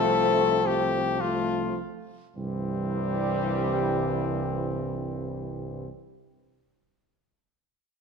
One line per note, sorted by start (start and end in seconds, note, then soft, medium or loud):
0.00 1.84 C2 medium
0.00 1.84 F3 loud
0.00 1.83 A3 loud
0.00 1.20 C4 loud
0.00 0.68 A4 loud
0.67 1.22 G4 loud
1.20 1.77 A3 loud
1.20 1.78 F4 loud
2.37 5.88 C2 loud
2.37 5.88 G2 medium
2.37 5.88 E3 medium
2.37 5.89 G3 loud
2.37 5.88 C4 loud